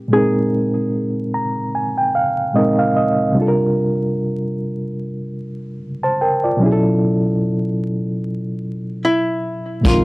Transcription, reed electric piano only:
0.00 0.13 D#4 medium
0.00 0.11 A#4 medium
0.08 2.49 A#2 medium
0.08 2.50 G#3 soft
0.12 2.51 C4 medium
0.12 2.53 D#4 medium
0.17 2.54 A#4 medium
1.34 1.72 A#5 medium
1.75 1.96 G#5 medium
1.98 2.14 G5 medium
2.15 2.53 F5 medium
2.53 3.35 A#2 medium
2.53 3.36 G#3 medium
2.53 3.36 C4 medium
2.53 3.37 D#4 medium
2.53 2.77 D#5 medium
2.58 3.38 A#4 medium
2.79 2.95 F5 medium
2.96 3.34 D#5 medium
3.32 6.55 C3 medium
3.32 6.56 G3 medium
3.37 6.57 D4 medium
3.37 5.77 F4 medium
3.42 3.46 A4 medium
3.48 5.81 A#4 medium
6.03 6.20 C5 medium
6.03 6.20 A5 medium
6.21 6.43 A#4 medium
6.21 6.42 G5 medium
6.44 6.82 F4 soft
6.44 6.82 D5 medium
6.57 9.79 B2 medium
6.57 9.80 F#3 medium
6.61 9.81 C#4 medium
6.61 9.82 E4 medium
6.66 6.71 G#4 medium
6.72 9.87 A4 medium
9.81 10.04 A#2 medium
9.81 10.04 G#3 medium
9.86 10.04 C4 medium
9.86 9.94 D4 soft
9.90 10.04 A#4 medium
9.94 10.04 D#4 medium

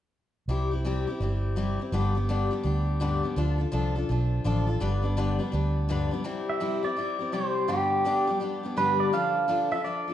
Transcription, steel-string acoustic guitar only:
0.49 0.71 C3 medium
0.49 0.71 G3 medium
0.49 0.71 C4 medium
0.49 0.72 E4 medium
0.49 0.70 G4 medium
0.71 0.85 C4 soft
0.71 0.85 E4 soft
0.71 0.84 G4 medium
0.85 1.07 C3 medium
0.85 1.07 G3 medium
0.85 1.08 C4 medium
0.85 1.07 E4 medium
0.85 1.06 G4 medium
1.07 1.21 C4 soft
1.07 1.21 E4 soft
1.07 1.20 G4 medium
1.21 1.56 G3 medium
1.21 1.56 C4 medium
1.21 1.57 E4 medium
1.21 1.57 G4 medium
1.56 1.79 C3 medium
1.56 1.79 G3 medium
1.56 1.79 C4 medium
1.56 1.80 E4 medium
1.56 1.78 G4 medium
1.80 1.93 C4 soft
1.80 1.93 E4 soft
1.80 1.92 G4 soft
1.92 2.15 G2 medium
1.92 2.15 D3 medium
1.92 2.16 G3 medium
1.92 2.16 B3 medium
1.92 2.15 D4 medium
1.92 2.14 G4 medium
2.15 2.28 G3 soft
2.15 2.29 B3 soft
2.15 2.29 D4 soft
2.15 2.28 G4 medium
2.29 2.52 G2 medium
2.29 2.52 D3 medium
2.29 2.52 G3 medium
2.29 2.52 B3 medium
2.29 2.50 D4 medium
2.29 2.50 G4 medium
2.51 2.62 G3 soft
2.51 2.64 B3 soft
2.51 2.64 D4 medium
2.51 2.64 G4 soft
2.63 3.00 G3 medium
2.63 3.01 B3 medium
2.63 3.01 D4 medium
2.63 3.01 G4 medium
3.00 3.23 G2 medium
3.00 3.23 D3 medium
3.00 3.23 G3 medium
3.00 3.24 B3 medium
3.00 3.23 D4 medium
3.00 3.22 G4 medium
3.23 3.37 G3 soft
3.23 3.37 B3 soft
3.23 3.37 D4 soft
3.23 3.36 G4 soft
3.36 3.59 D3 medium
3.36 3.60 F3 medium
3.36 3.60 D4 medium
3.36 3.59 F4 medium
3.36 3.57 A4 medium
3.58 3.72 D4 soft
3.58 3.72 F4 medium
3.58 3.72 A4 medium
3.72 3.95 D3 medium
3.72 3.95 F3 medium
3.72 3.96 D4 medium
3.72 3.96 F4 medium
3.72 3.94 A4 medium
3.96 4.09 D4 soft
3.96 4.09 F4 soft
3.96 4.09 A4 medium
4.09 4.44 F3 medium
4.09 4.45 D4 medium
4.09 4.45 F4 medium
4.09 4.45 A4 medium
4.44 4.67 D3 medium
4.44 4.68 F3 medium
4.44 4.68 D4 medium
4.44 4.67 F4 medium
4.44 4.66 A4 medium
4.67 4.81 D4 soft
4.67 4.81 F4 soft
4.67 4.80 A4 soft
4.80 5.03 G2 medium
4.80 5.04 D3 medium
4.80 5.04 G3 medium
4.80 5.04 B3 medium
4.80 5.02 D4 medium
4.80 5.01 B4 medium
5.02 5.16 G3 soft
5.02 5.17 B3 soft
5.02 5.17 D4 soft
5.02 5.16 B4 soft
5.17 5.40 G2 medium
5.17 5.40 D3 medium
5.17 5.40 G3 medium
5.17 5.40 B3 medium
5.17 5.38 D4 medium
5.17 5.38 B4 medium
5.39 5.51 G3 soft
5.39 5.52 B3 soft
5.39 5.53 D4 medium
5.39 5.52 B4 medium
5.52 5.88 G3 medium
5.52 5.89 B3 medium
5.52 5.90 D4 medium
5.52 5.90 B4 medium
5.89 6.12 G2 medium
5.89 6.12 D3 medium
5.89 6.12 G3 medium
5.89 6.12 B3 medium
5.89 6.11 D4 medium
5.89 6.10 B4 medium
6.11 6.23 G3 soft
6.11 6.24 B3 soft
6.11 6.25 D4 medium
6.11 6.25 B4 soft
6.24 6.59 C3 medium
6.24 6.60 G3 medium
6.24 6.60 C4 medium
6.24 6.61 E4 medium
6.24 6.62 G4 medium
6.60 6.84 C3 medium
6.60 6.84 G3 medium
6.60 6.84 C4 medium
6.60 6.83 E4 medium
6.60 6.81 G4 medium
6.83 6.96 C4 soft
6.83 6.97 E4 soft
6.83 6.97 G4 soft
6.97 7.20 G3 soft
6.97 7.20 C4 soft
6.97 7.19 E4 medium
6.97 7.18 G4 medium
7.19 7.32 C4 soft
7.19 7.33 E4 soft
7.19 7.33 G4 soft
7.32 7.68 C3 medium
7.32 7.67 G3 medium
7.32 7.69 C4 medium
7.32 7.69 E4 medium
7.32 7.68 G4 medium
7.68 8.03 G2 medium
7.68 8.04 D3 medium
7.68 8.04 G3 medium
7.68 8.05 B3 medium
7.68 8.06 D4 medium
7.68 8.06 G4 medium
8.04 8.28 G2 medium
8.04 8.28 D3 medium
8.04 8.28 G3 medium
8.04 8.28 B3 medium
8.04 8.28 D4 medium
8.04 8.26 G4 medium
8.27 8.39 G3 soft
8.27 8.40 B3 soft
8.27 8.41 D4 soft
8.27 8.41 G4 medium
8.40 8.64 G3 medium
8.40 8.64 B3 medium
8.40 8.63 D4 medium
8.40 8.62 G4 medium
8.63 8.76 G3 soft
8.63 8.77 B3 soft
8.63 8.77 D4 soft
8.63 8.77 G4 soft
8.77 9.13 G2 medium
8.77 9.12 D3 medium
8.77 9.13 G3 medium
8.77 9.13 B3 medium
8.77 9.14 D4 medium
8.77 9.14 G4 medium
9.13 9.47 D3 medium
9.13 9.48 F3 medium
9.13 9.49 D4 medium
9.13 9.48 F4 medium
9.13 9.49 A4 medium
9.48 9.72 D3 medium
9.48 9.72 F3 medium
9.48 9.72 D4 medium
9.48 9.72 F4 medium
9.48 9.70 A4 medium
9.71 9.85 D4 soft
9.71 9.85 F4 soft
9.71 9.85 A4 soft
9.85 10.08 F3 soft
9.85 10.09 D4 medium
9.85 10.08 F4 soft
9.85 10.07 A4 medium
10.08 10.14 D4 soft
10.08 10.14 F4 soft
10.08 10.14 A4 soft

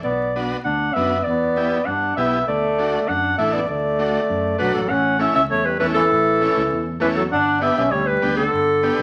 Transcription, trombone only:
0.04 0.36 B3 medium
0.65 0.96 D4 medium
0.95 1.26 B3 medium
1.26 1.87 B3 medium
1.86 2.16 D4 medium
2.17 2.45 B3 medium
2.46 3.10 A3 medium
3.08 3.37 D4 medium
3.38 3.55 A3 medium
3.53 3.68 B3 medium
3.69 4.56 A3 medium
4.60 4.74 F#3 medium
4.74 4.90 F#3 medium
4.88 5.19 C#4 loud
5.19 5.34 C#4 medium
5.34 5.41 C#4 medium
5.50 5.67 A3 medium
5.65 5.79 G3 medium
5.80 5.87 E3 medium
5.96 6.84 E3 medium
7.01 7.08 E3 medium
7.16 7.23 F#3 medium
7.32 7.60 D4 loud
7.62 7.76 B3 medium
7.78 7.92 C#4 medium
7.91 8.06 G3 medium
8.06 8.36 G3 medium
8.36 9.02 D3 medium

